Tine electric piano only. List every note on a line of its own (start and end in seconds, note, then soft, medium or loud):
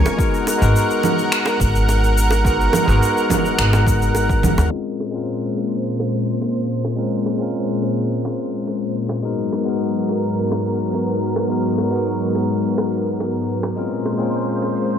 0.00 0.14 G#3 medium
0.00 0.15 C4 medium
0.00 0.15 C#4 medium
0.00 0.16 F4 medium
0.00 0.17 A#4 medium
0.17 0.57 G#3 medium
0.17 0.57 B3 medium
0.17 0.58 D#4 medium
0.17 0.58 F#4 medium
0.17 0.58 A#4 medium
0.58 2.40 G#3 medium
0.58 2.41 B3 medium
0.58 2.41 D#4 medium
0.58 2.42 F#4 medium
0.63 2.43 A#4 medium
2.44 2.84 G#3 medium
2.44 2.84 B3 medium
2.44 2.84 D#4 medium
2.44 2.85 F#4 medium
2.44 2.85 A#4 medium
2.85 4.67 G#3 medium
2.85 4.67 B3 medium
2.85 4.68 D#4 medium
2.85 4.69 F#4 medium
2.90 4.69 A#4 medium
4.70 5.10 G#3 medium
4.70 5.10 C4 medium
4.70 5.11 C#4 medium
4.70 5.11 F4 medium
5.11 6.93 G#3 medium
5.11 6.94 C4 medium
5.11 6.94 C#4 medium
5.11 6.95 F4 medium
5.16 6.95 A#4 medium
6.96 7.36 G#3 medium
6.96 7.36 C4 medium
6.96 7.37 C#4 medium
6.96 7.37 F4 medium
6.96 7.37 A#4 medium
7.37 9.19 G#3 medium
7.37 9.20 C4 medium
7.37 9.21 C#4 medium
7.37 9.21 F4 medium
7.42 9.22 A#4 medium
9.23 9.63 G#3 medium
9.23 9.63 B3 medium
9.23 9.63 D#4 medium
9.23 9.64 F#4 medium
9.23 9.64 A#4 medium
9.64 11.46 G#3 medium
9.64 11.47 B3 medium
9.64 11.47 D#4 medium
9.64 11.48 F#4 medium
9.69 11.48 A#4 medium
11.49 11.89 G#3 medium
11.49 11.89 B3 medium
11.49 11.90 D#4 medium
11.49 11.90 F#4 medium
11.49 11.90 A#4 medium
11.90 13.72 G#3 medium
11.90 13.73 B3 medium
11.90 13.74 D#4 medium
11.94 13.74 F#4 medium
11.94 13.75 A#4 medium
13.76 14.16 G#3 medium
13.76 14.16 C4 medium
13.76 14.17 C#4 medium
13.76 14.17 F4 medium
13.76 14.17 A#4 medium
14.17 14.99 G#3 medium
14.17 14.99 C4 medium
14.17 14.99 C#4 medium
14.17 14.99 F4 medium
14.22 14.99 A#4 medium